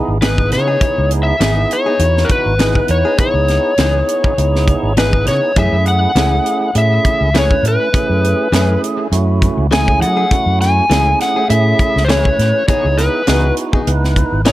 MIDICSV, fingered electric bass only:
0, 0, Header, 1, 3, 480
1, 0, Start_track
1, 0, Key_signature, 4, "minor"
1, 0, Tempo, 592885
1, 668, Time_signature, 4, 2, 24, 8
1, 11755, End_track
2, 0, Start_track
2, 0, Title_t, "Fingered electric bass"
2, 0, Program_c, 0, 33
2, 67, Note_on_c, 0, 32, 73
2, 425, Note_on_c, 0, 49, 90
2, 437, Note_off_c, 0, 32, 0
2, 608, Note_off_c, 0, 49, 0
2, 794, Note_on_c, 0, 37, 89
2, 1061, Note_off_c, 0, 37, 0
2, 1136, Note_on_c, 0, 32, 106
2, 1323, Note_off_c, 0, 32, 0
2, 1613, Note_on_c, 0, 40, 91
2, 1801, Note_off_c, 0, 40, 0
2, 1990, Note_on_c, 0, 32, 86
2, 2258, Note_off_c, 0, 32, 0
2, 2340, Note_on_c, 0, 40, 99
2, 2442, Note_off_c, 0, 40, 0
2, 2702, Note_on_c, 0, 37, 91
2, 2891, Note_off_c, 0, 37, 0
2, 3061, Note_on_c, 0, 37, 94
2, 3246, Note_off_c, 0, 37, 0
2, 3546, Note_on_c, 0, 37, 85
2, 3829, Note_off_c, 0, 37, 0
2, 3912, Note_on_c, 0, 32, 74
2, 4260, Note_on_c, 0, 49, 83
2, 4272, Note_off_c, 0, 32, 0
2, 4362, Note_off_c, 0, 49, 0
2, 4503, Note_on_c, 0, 42, 103
2, 4604, Note_off_c, 0, 42, 0
2, 4635, Note_on_c, 0, 42, 85
2, 4902, Note_off_c, 0, 42, 0
2, 4981, Note_on_c, 0, 37, 105
2, 5166, Note_off_c, 0, 37, 0
2, 5467, Note_on_c, 0, 45, 87
2, 5650, Note_off_c, 0, 45, 0
2, 5835, Note_on_c, 0, 37, 80
2, 6102, Note_off_c, 0, 37, 0
2, 6177, Note_on_c, 0, 45, 102
2, 6281, Note_off_c, 0, 45, 0
2, 6555, Note_on_c, 0, 42, 88
2, 6739, Note_off_c, 0, 42, 0
2, 6900, Note_on_c, 0, 42, 94
2, 7085, Note_off_c, 0, 42, 0
2, 7381, Note_on_c, 0, 42, 96
2, 7665, Note_off_c, 0, 42, 0
2, 7751, Note_on_c, 0, 37, 85
2, 8099, Note_on_c, 0, 54, 96
2, 8111, Note_off_c, 0, 37, 0
2, 8285, Note_off_c, 0, 54, 0
2, 8470, Note_on_c, 0, 42, 89
2, 8738, Note_off_c, 0, 42, 0
2, 8823, Note_on_c, 0, 37, 91
2, 9007, Note_off_c, 0, 37, 0
2, 9310, Note_on_c, 0, 45, 95
2, 9491, Note_off_c, 0, 45, 0
2, 9682, Note_on_c, 0, 37, 81
2, 9946, Note_off_c, 0, 37, 0
2, 10029, Note_on_c, 0, 45, 103
2, 10127, Note_off_c, 0, 45, 0
2, 10400, Note_on_c, 0, 37, 84
2, 10581, Note_off_c, 0, 37, 0
2, 10750, Note_on_c, 0, 37, 84
2, 10930, Note_off_c, 0, 37, 0
2, 11231, Note_on_c, 0, 37, 96
2, 11510, Note_off_c, 0, 37, 0
2, 11596, Note_on_c, 0, 32, 73
2, 11755, Note_off_c, 0, 32, 0
2, 11755, End_track
3, 0, Start_track
3, 0, Title_t, "Muted fingered electric bass strokes"
3, 2578, Note_on_c, 9, 29, 38
3, 2659, Note_off_c, 9, 29, 0
3, 6429, Note_on_c, 9, 29, 35
3, 6510, Note_off_c, 9, 29, 0
3, 11755, End_track
0, 0, End_of_file